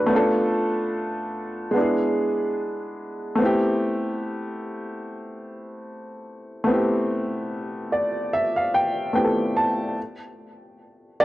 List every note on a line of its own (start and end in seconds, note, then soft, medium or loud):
0.00 0.06 A3 soft
0.00 0.16 D4 medium
0.00 0.12 F#4 medium
0.00 0.13 A4 medium
0.00 0.32 B4 medium
0.06 1.70 A3 medium
0.06 1.71 B3 medium
0.11 0.18 C#4 medium
0.11 1.73 F4 medium
0.16 1.75 D4 medium
0.16 1.75 A4 medium
1.71 3.34 G#3 medium
1.71 3.35 B3 medium
1.76 3.37 D4 medium
1.76 3.38 E4 medium
1.81 3.39 G#4 medium
3.35 6.62 A3 medium
3.35 6.63 B3 medium
3.40 6.65 C4 medium
3.40 6.66 E4 medium
3.45 6.67 G4 medium
6.64 9.09 A3 medium
6.64 9.10 B3 medium
6.69 9.11 C4 medium
6.69 9.12 E4 medium
6.74 9.14 G4 medium
7.92 8.30 D5 medium
8.33 8.54 E5 medium
8.56 8.73 F5 medium
8.74 9.12 G5 medium
9.13 9.96 A3 medium
9.13 9.97 B3 medium
9.13 9.97 C4 soft
9.13 9.98 E4 medium
9.13 9.53 G5 medium
9.18 9.24 G4 medium
9.25 10.02 A4 medium
9.57 9.94 A5 medium
11.20 11.25 C3 medium
11.20 11.25 G3 soft
11.20 11.25 C4 medium
11.20 11.25 D5 loud